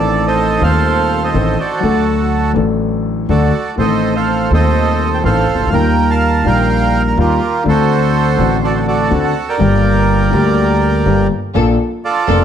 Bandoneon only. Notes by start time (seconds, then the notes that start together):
Already playing: A4 D5
0.27 A4 C5 D#5
0.63 A4 C5 F5
1.24 A4 C5 D#5
1.60 F#4 A4 D5
3.30 F#4 A4 D5
3.78 A4 C5 D#5
4.16 A4 C5 F5
4.53 A4 C5 D#5
5.14 G5
5.25 A4 C5 F5
5.74 A#4 G5
6.10 F5 A5
6.47 A#4 G5
7.08 A#5
7.20 F4 G4 A#4
7.68 F#4 A4 C5
8.64 F#4 A4 D5
8.75 C5
8.88 F#4 A4 D5
9.24 F#5
9.49 A#4 D5 G5
12.05 F4 A4 D5